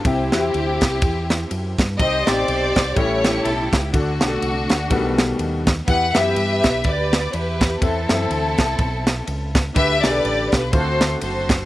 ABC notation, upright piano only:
X:1
M:4/4
L:1/8
Q:"Swing" 1/4=124
K:Clyd
V:1 name="Upright piano"
[CEG] [CEFG]2 z4 z | [C_EG] [CEG]2 z [G,A,^C=EA]3 z | [DFA] [DFGA]2 z [^D,G,B,FA]3 z | [B,EG] [B,EG]2 z4 z |
[CEA] [CEA]2 z4 z | [DGB] [DG_A=A]2 z [A,CD=F^Fc]3 z |]
V:2 name="Upright piano" clef=bass
C,3 z4 z | C,3 z A,,3 z | D,3 z B,,3 z | E,3 z4 z |
E,3 z4 z | D,3 z D,3 z |]